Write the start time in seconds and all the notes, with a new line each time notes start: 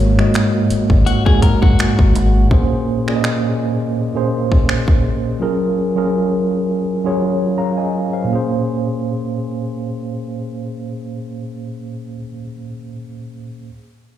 Already playing: G#1 G#2 G#3 A#3 F#4 C#5, downlifter
0.17 G#2 G#3 A#3 F#4 D#5, finger snap
0.34 finger snap, closed hi-hat
0.70 muted fingered electric bass stroke, closed hi-hat
0.90 G#1, kick
1.06 F#4, closed hi-hat
1.26 G#2 G#3 A#3 F#4 G#4, kick
1.42 A#4, muted fingered electric bass stroke, kick, closed hi-hat
1.62 F#1 F#4, kick
1.79 finger snap, closed hi-hat
1.99 G#1, kick
2.15 G#1, closed hi-hat
2.50 A#2 A#3 C#4 G#4 C5, kick
3.06 A#2 A#3 C#4 G#4 D5, finger snap
3.16 D#5
3.24 finger snap
4.14 A#2 A#3 C#4 G#4 C5
4.52 kick
4.69 finger snap
4.88 kick
5.40 F#3 C#4 F4 G#4 A#4
5.95 F#3 C#4 F4 G#4 A#4
7.04 F#3 C#4 F4 G#4 C#5
7.58 F5 A#5
7.77 D#5 G#5
8.13 C5 F5
8.24 A#2 A#3
8.30 C#4 G#4
8.35 C5